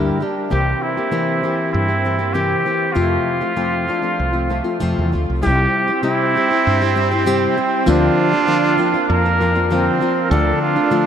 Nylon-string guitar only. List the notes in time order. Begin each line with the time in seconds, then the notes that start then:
Already playing: G2 D3 G3 A#3 D4 G4
0.20 G3 A#3 D4 G4
0.50 C3 E3 A#3 C4 G4
0.97 A#3 C4 G4
1.11 C3 E3 A#3 C4 G4
1.43 E3 A#3 C4 G4
1.88 A#3 C4 G4
2.05 E3 A#3 C4 G4
2.19 A#3 C4 G4
2.34 C3 E3 A#3 C4 G4
2.66 E3 A#3 C4 G4
2.95 F2 C3 F3 A3 C4 F4
3.41 F3 A3 C4 F4
3.56 F2 C3 F3 A3 C4 F4
3.87 F3 A3 C4 F4
4.02 F3 A3 C4 F4
4.33 F3 A3 C4 F4
4.49 F3 A3 C4 F4
4.64 F3 A3 C4 F4
4.80 F2 C3 F3 A3 C4 F4
5.12 F3 A3 C4 F4
5.42 C3 G3 C4 E4 G4
5.88 C4 E4 G4
6.03 C3 G3 C4 E4 G4
6.35 G3 C4 E4 G4
6.51 C4 E4 G4
6.81 C4 E4 G4
6.96 G3 C4 E4 G4
7.11 C4 E4 G4
7.26 C3 G3 C4 E4 G4
7.57 G3 C4 E4 G4
7.86 D3 F3 A#3 C4 F4
8.34 A#3 C4
8.47 D3 F3 A#3 C4 F4
8.77 F3 A#3 C4 F4
8.94 A#3 C4 F4
9.26 A#3 C4 F4
9.41 F3 A#3 C4 F4
9.55 A#3 C4 F4
9.70 D3 F3 A#3 C4 F4
10.01 F3 A#3 C4 F4
10.31 D3 F3 A3 D4 F4
10.76 A3 D4 F4
10.91 D3 F3 A3 D4 F4